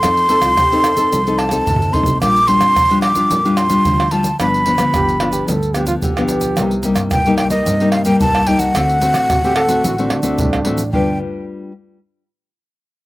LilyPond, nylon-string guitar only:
\new Staff \with { instrumentName = "Nylon-string guitar" } { \time 4/4 \key f \mixolydian \tempo 4 = 110 << { <c' ees' a'>8 <c' ees' a'>8 r16 <c' ees' a'>8 <c' ees' a'>8 <c' ees' a'>8 <c' ees' a'>8. <c' ees' a'>8 | <g d' f'>16 r16 <g d' f'>8 r16 <g d' f'>8 <g d' f'>8 <g d' f'>8 <g d' f'>8. <g d' f'>16 r16 | <f b d'>8 <f b d'>16 <f b d'>8. <f b d'>8. r16 <f b d'>8. <f b d'>8. | <g bes ees'>16 r16 <g bes ees'>8. <g bes ees'>8 <g bes ees'>8 <g bes ees'>8 <g bes ees'>8. <g bes ees'>8 |
<a c' fis'>8 <a c' fis'>8. <a c' fis'>8 <a c' fis'>8 <a c' fis'>8 <a c' fis'>8. <a c' fis'>16 r16 | <g d' f' b'>8 r2. r8 | } \\ { f4 c4 f4 c4 | bes,4 f4 bes,4 f4 | g,4 d4 g,4 d4 | c4 g,4 c4 g,4 |
d4 a,4 d4 a,4 | r1 | } >> }